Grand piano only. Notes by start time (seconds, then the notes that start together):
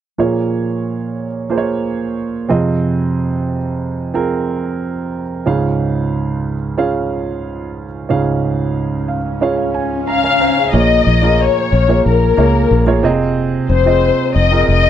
0.18 A#2 F3 A#3 F4 G#4 C#5
1.50 A#3 F4 G#4 C5
1.58 C#5
2.49 F2 C3 C4 F4 G#4 D#5
4.14 C4 F4 G#4 A#4
5.46 C#2 G#2 C#4 F4 G#4 F5
6.78 C#4 F4 G#4 F5
8.09 C#2 G#2 C#4 F4 G#4 F5
9.08 F5
9.41 C#4 F4 G#4 C#5 F5
9.58 F5
9.74 G#5
10.07 A#5
10.23 C#5 G#5 A#5
10.40 C5 G#5 A#5
10.57 G#4 F5
10.73 A#2 F3 A#3 F4 G#4 C#5
11.22 A#3 F4 G#4 A#4
11.88 A#3 F4 G#4 C#5
12.37 A#3 F4 G#4 C#5
12.86 A#3 F4 G#4 C#5
13.03 C3 C4 F4 G#4 D#5
13.86 C4 F4 G#4 D#5
14.51 C4 F4 G#4 A#4